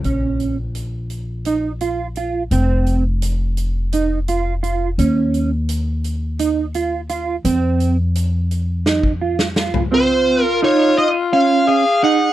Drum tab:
HH |x-x-x-x-x-x-x-|x-x-x-x-x-x-x-|x-x-x-x-x-x-x-|x-x-x-x-------|
SD |--------------|--------------|--------------|--------o--oo-|
FT |--------------|--------------|--------------|-------------o|
BD |--------------|--------------|--------------|---------o----|

HH |--------------|
SD |--------------|
FT |--------------|
BD |--------------|